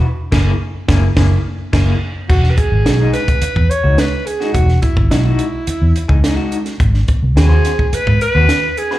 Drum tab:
CC |--x---------x---|x---------------|----------------|----------------|
HH |----------------|--x-x-xxx-x-x-x-|x-x-x-x-x-x-x-xx|x-x-x-x-x-x-x-x-|
SD |--o---o-o---o---|-o--o-o-----o--o|-o--o-------o--o|-o--o-o-----o--o|
BD |--o---o-o---o---|o-o----o-o------|o-oo-------o----|o-o----o-o------|